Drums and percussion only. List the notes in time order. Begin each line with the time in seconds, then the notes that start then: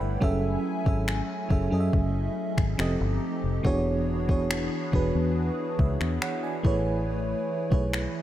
0.22 kick
0.86 kick
1.08 finger snap
1.50 kick
1.93 kick
2.58 finger snap, kick
2.79 finger snap
3.65 kick
4.29 kick
4.51 finger snap
4.93 kick
5.79 kick
6.01 finger snap
6.22 finger snap
6.65 kick
7.72 kick
7.93 finger snap